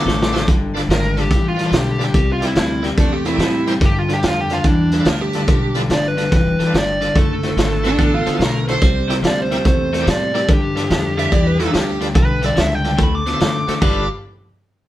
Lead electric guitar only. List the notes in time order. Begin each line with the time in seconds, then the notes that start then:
Already playing: D6
0.94 A#4
1.21 G4
1.48 F4
1.77 G4
2.05 G4
2.32 F4
2.47 E4
3.85 G4
3.99 F4
4.13 G4
4.27 F4
4.41 G4
4.54 F4
4.67 D4
5.93 D5
6.08 B4
6.36 B4
6.78 D5
7.18 A4
9.27 D5
9.42 C5
9.67 C5
10.10 D5
10.53 G4
12.18 B4
12.46 D5
12.60 E5
12.75 G5
13.03 B5
13.15 D6
13.29 D6
13.83 D6